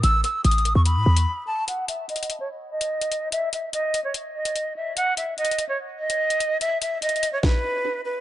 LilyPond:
<<
  \new Staff \with { instrumentName = "Flute" } { \time 4/4 \key a \lydian \tempo 4 = 146 e'''8 e'''8 dis'''8. cis'''16 b''4. a''8 | fis''8 e''8 dis''8. cis''16 r8 dis''4. | e''8 e''8 dis''8. cis''16 r8 dis''4 e''8 | fis''8 e''8 dis''8. cis''16 r8 dis''4. |
e''8 e''8 dis''8. cis''16 b'4. b'8 | }
  \new Staff \with { instrumentName = "808-style bass" } { \clef bass \time 4/4 \key a \lydian a,,8 r8 a,,8. e,8 a,16 e,8 r4 | r1 | r1 | r1 |
r1 | }
  \new DrumStaff \with { instrumentName = "Drums" } \drummode { \time 4/4 hh8 hh8 \tuplet 3/2 { hh16 hh16 hh16 hh16 r16 r16 } hh8. hh16 r4 | hh8 hh8 \tuplet 3/2 { hh16 hh16 hh16 hh16 r16 r16 } r8. hh16 r16 hh16 hh8 | hh8 hh8 hh8 hh8 hh8. hh16 hh4 | hh8 hh8 \tuplet 3/2 { hh16 hh16 hh16 hh16 r16 r16 } r8. hh16 r16 hh16 hh8 |
hh8 hh8 \tuplet 3/2 { hh16 hh16 hh16 hh16 r16 r16 } <bd sn>4 r4 | }
>>